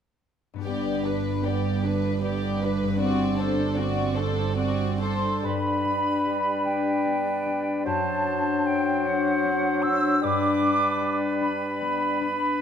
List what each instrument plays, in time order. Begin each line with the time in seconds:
0.54 harp G2 B3
0.58 harp D4 G4
0.64 double bass section G1, cello section G2, viola section B3, violin section G4 D5
1.04 viola section D4, violin section B4
1.44 viola section B3, violin section G4 D5
1.84 viola section D4, violin section B4
2.23 viola section B3, violin section G4 D5
2.61 viola section D4, violin section B4
2.83 harp G2
2.88 harp C4
2.92 harp D4
2.96 viola section C4, harp F#4, violin section F#4 D5
3.38 viola section D4, violin section A4 C5
3.76 viola section C4, violin section F#4 D5
4.16 viola section D4, violin section A4 C5
4.56 viola section C4, violin section F#4 D5
5.00 viola section D4, violin section A4 C5, flute section C6
5.43 harp G2, bassoon G3, clarinet D4, oboe B4, flute section B5
5.84 harp D4
6.26 harp G4
6.65 harp D4, flute section G5
7.05 harp B3
7.46 harp D4
7.86 harp F#2, bassoon F#3, oboe C5, flute section A5
8.27 harp D4
8.65 harp A4, flute section G5
9.04 harp D4, flute section F#5
9.83 harp D4, flute section E6
10.22 harp G2, bassoon G3, clarinet D4, oboe B4, flute section D6
10.62 harp D4
11.02 harp G4
11.41 harp D4, flute section B5
11.82 harp B3
12.21 harp D4